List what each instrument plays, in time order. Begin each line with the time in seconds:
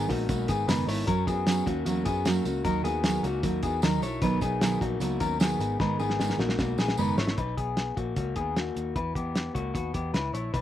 0.08 picked electric bass A#1, steel-string acoustic guitar G#3 B3 D#4 A#4, clean electric guitar A#3 F#4, kick, hi-hat pedal, open hi-hat, tambourine
0.28 picked electric bass B1, steel-string acoustic guitar G#3 B3 D#4 A#4, clean electric guitar A#3 F#4, kick, hi-hat pedal, open hi-hat, tambourine
0.48 picked electric bass G#1, steel-string acoustic guitar G#3 B3 D#4 A#4, clean electric guitar B3 G#4, kick, hi-hat pedal, open hi-hat, tambourine
0.67 picked electric bass F#1, steel-string acoustic guitar G#2 D#3 G#3 B3 D#4 A#4, clean electric guitar D#4 B4, snare, hi-hat pedal, open hi-hat, tambourine
0.87 picked electric bass G#1, steel-string acoustic guitar G#3 B3 D#4 A#4, clean electric guitar E4 C#5, hi-hat pedal, open hi-hat, tambourine
1.07 picked electric bass F#2, steel-string acoustic guitar F#3 C#4 F#4 A#4, clean electric guitar C#4 A#4, kick, closed hi-hat, tambourine
1.27 picked electric bass F#2, clean electric guitar B3 G#4, steel-string acoustic guitar C#4 F#4 A#4, kick, closed hi-hat, tambourine
1.47 steel-string acoustic guitar F#3 C#4 F#4 A#4, snare, closed hi-hat, tambourine
1.66 picked electric bass D#2, clean electric guitar A#3 F#4, steel-string acoustic guitar C#4 F#4 A#4, kick, closed hi-hat
1.85 picked electric bass E2, steel-string acoustic guitar F#3 C#4 F#4 A#4, clean electric guitar A#3 F#4, closed hi-hat, tambourine
2.05 picked electric bass F#2, clean electric guitar B3 G#4, steel-string acoustic guitar C#4 F#4 A#4, kick, closed hi-hat, tambourine
2.25 steel-string acoustic guitar F#3 C#4 F#4 A#4, clean electric guitar A#3 F#4, snare, closed hi-hat, tambourine
2.45 picked electric bass C#2, steel-string acoustic guitar C#4 F#4 A#4, closed hi-hat, tambourine
2.64 picked electric bass D#2, steel-string acoustic guitar D#3 F#3 D#4 F#4 A#4, clean electric guitar D#4 A#4, kick, closed hi-hat, tambourine
2.84 picked electric bass D#2, clean electric guitar B3 G#4, steel-string acoustic guitar D#4 F#4 A#4, closed hi-hat, tambourine
3.04 steel-string acoustic guitar D#3 F#3 D#4 F#4 A#4, snare, closed hi-hat, tambourine
3.23 picked electric bass C#2, clean electric guitar A#3 F#4, steel-string acoustic guitar D#4 F#4 A#4, closed hi-hat, tambourine
3.43 picked electric bass D#2, steel-string acoustic guitar F#3 D#4 F#4 A#4, clean electric guitar A#3 F#4, kick, closed hi-hat, tambourine
3.63 picked electric bass E2, clean electric guitar B3 G#4, steel-string acoustic guitar D#4 F#4 A#4, kick, closed hi-hat, tambourine
3.82 picked electric bass D#2, steel-string acoustic guitar D#3 F#3 D#4 F#4 A#4, clean electric guitar D#4 A#4, snare, closed hi-hat, tambourine
4.02 picked electric bass B1, steel-string acoustic guitar D#4 F#4 A#4, clean electric guitar E4 C#5, closed hi-hat, tambourine
4.22 picked electric bass B1, steel-string acoustic guitar B2 D#3 F#3 B3 D#4 A#4, clean electric guitar D#4 B4, kick, closed hi-hat, tambourine
4.41 picked electric bass B1, steel-string acoustic guitar F#3 B3 D#4 A#4, clean electric guitar B3 G#4, kick, closed hi-hat, tambourine
4.61 steel-string acoustic guitar B2 D#3 F#3 B3 D#4 A#4, snare, closed hi-hat, tambourine
4.81 picked electric bass A#1, steel-string acoustic guitar F#3 B3 D#4 A#4, clean electric guitar A#3 F#4, kick, closed hi-hat
5.00 picked electric bass C#2, steel-string acoustic guitar F#3 B3 D#4 A#4, clean electric guitar A#3 F#4, closed hi-hat, tambourine
5.20 picked electric bass D#2, steel-string acoustic guitar F#3 B3 D#4 A#4, clean electric guitar C#4 A#4, kick, closed hi-hat, tambourine
5.39 steel-string acoustic guitar B2 D#3 F#3 B3 D#4 A#4, clean electric guitar B3 G#4, snare, closed hi-hat, tambourine
5.59 picked electric bass G#1, steel-string acoustic guitar G#3 B3 D#4 A#4, closed hi-hat, tambourine
5.79 picked electric bass G#1, steel-string acoustic guitar G#2 D#3 G#3 B3 D#4 A#4, clean electric guitar D#4 B4, kick, snare, tambourine
5.99 picked electric bass G#1, steel-string acoustic guitar G#3 B3 D#4 A#4, clean electric guitar B3 G#4, tambourine
6.10 snare
6.19 steel-string acoustic guitar G#2 D#3 G#3 B3 D#4 A#4, snare, tambourine
6.30 snare
6.38 picked electric bass A#1, steel-string acoustic guitar G#3 B3 D#4 A#4, clean electric guitar A#3 F#4, snare
6.49 snare
6.58 picked electric bass B1, steel-string acoustic guitar G#3 B3 D#4 A#4, clean electric guitar A#3 F#4, kick, snare, tambourine
6.78 picked electric bass A#1, steel-string acoustic guitar G#3 B3 D#4 A#4, clean electric guitar B3 G#4, snare, tambourine
6.88 snare
6.97 picked electric bass F#1, steel-string acoustic guitar G#2 D#3 G#3 B3 D#4 A#4, clean electric guitar D#4 B4, tambourine
7.17 picked electric bass G#1, steel-string acoustic guitar G#3 B3 D#4 A#4, clean electric guitar E4 C#5, snare, tambourine
7.27 snare
7.38 picked electric bass B1, clean electric guitar D#4 B4, kick, closed hi-hat
7.57 picked electric bass B1, clean electric guitar B3 G#4, kick, closed hi-hat
7.77 snare, closed hi-hat
7.97 picked electric bass A#1, clean electric guitar A#3 F#4, kick, closed hi-hat
8.16 picked electric bass C#2, clean electric guitar A#3 F#4, kick, closed hi-hat
8.36 picked electric bass D#2, clean electric guitar B3 G#4, kick, closed hi-hat
8.56 clean electric guitar A#3 F#4, snare, closed hi-hat
8.76 picked electric bass D#2, closed hi-hat
8.96 picked electric bass E2, clean electric guitar E4 B4, kick, closed hi-hat
9.15 picked electric bass E2, clean electric guitar B3 G4, kick, closed hi-hat
9.35 snare, closed hi-hat
9.55 picked electric bass C#2, clean electric guitar A#3 F#4, kick, closed hi-hat
9.74 picked electric bass D#2, clean electric guitar B3 F#4, kick, closed hi-hat
9.94 picked electric bass E2, clean electric guitar B3 G4, kick, closed hi-hat
10.13 picked electric bass C#2, clean electric guitar E4 B4, snare, closed hi-hat
10.33 picked electric bass A#1, clean electric guitar E4 C#5, closed hi-hat
10.54 picked electric bass B1, clean electric guitar D#4 B4, kick, closed hi-hat